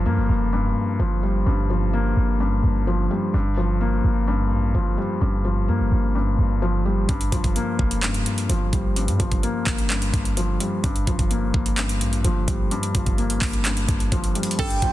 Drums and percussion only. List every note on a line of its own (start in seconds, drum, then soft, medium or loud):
7.09 kick loud
7.09 closed hi-hat medium
7.21 closed hi-hat medium
7.32 kick medium
7.32 closed hi-hat medium
7.44 kick loud
7.44 closed hi-hat medium
7.56 closed hi-hat medium
7.79 kick loud
7.91 closed hi-hat medium
8.03 clap loud
8.03 closed hi-hat medium
8.14 closed hi-hat medium
8.26 closed hi-hat medium
8.38 closed hi-hat medium
8.50 closed hi-hat medium
8.73 kick loud
8.73 closed hi-hat medium
8.96 closed hi-hat medium
9.08 closed hi-hat medium
9.20 kick loud
9.20 closed hi-hat medium
9.32 kick loud
9.32 closed hi-hat medium
9.43 closed hi-hat medium
9.67 kick loud
9.67 clap loud
9.78 closed hi-hat medium
9.90 clap loud
9.90 closed hi-hat medium
10.02 closed hi-hat medium
10.14 kick loud
10.14 closed hi-hat medium
10.25 closed hi-hat medium
10.37 closed hi-hat medium
10.60 closed hi-hat medium
10.84 kick loud
10.84 closed hi-hat medium
10.96 closed hi-hat medium
11.07 kick loud
11.07 closed hi-hat medium
11.19 kick loud
11.19 closed hi-hat medium
11.31 closed hi-hat medium
11.54 kick loud
11.66 closed hi-hat medium
11.78 clap loud
11.78 closed hi-hat medium
11.89 closed hi-hat medium
12.01 closed hi-hat medium
12.13 closed hi-hat medium
12.24 closed hi-hat medium
12.48 kick loud
12.48 closed hi-hat medium
12.71 closed hi-hat medium
12.83 closed hi-hat medium
12.95 kick loud
12.95 closed hi-hat medium
13.06 kick loud
13.06 closed hi-hat medium
13.18 closed hi-hat soft
13.30 closed hi-hat medium
13.42 kick loud
13.42 clap loud
13.42 open hi-hat medium
13.53 closed hi-hat medium
13.65 clap loud
13.65 closed hi-hat medium
13.77 closed hi-hat medium
13.89 kick loud
13.89 closed hi-hat medium
14.00 closed hi-hat medium
14.12 kick loud
14.12 closed hi-hat medium
14.24 closed hi-hat medium
14.35 closed hi-hat medium
14.43 closed hi-hat medium
14.51 closed hi-hat medium
14.59 kick loud
14.59 closed hi-hat medium
14.59 crash loud
14.70 closed hi-hat medium
14.82 kick medium
14.82 closed hi-hat medium